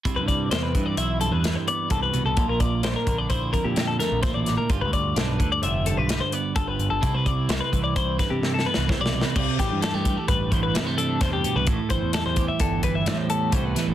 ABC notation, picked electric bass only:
X:1
M:5/4
L:1/16
Q:1/4=129
K:C
V:1 name="Picked electric bass" clef=bass
C,, G,,3 E,,2 G,,2 B,,,3 E,,2 z3 C,,2 C,, C,, | _B,,, B,,,3 B,,, z B,,,2 B,,,2 z _B,, B,,2 z B,,,2 A,,,2 z | G,,, D,,3 B,,,2 D,,2 F,,,3 B,,,2 z3 G,,,2 G,,, G,,, | C,, C,,3 C,, z C,,2 C,,2 z C, C,2 z C,,2 B,,,2 z |
C,, z A,,, G,,2 G,,2 z A,,,2 A,,,2 C,4 E,,2 z C,, | A,,, z G,,, E,,2 E,,2 z G,,,2 G,,,2 A,,4 C,,2 z A,,, |]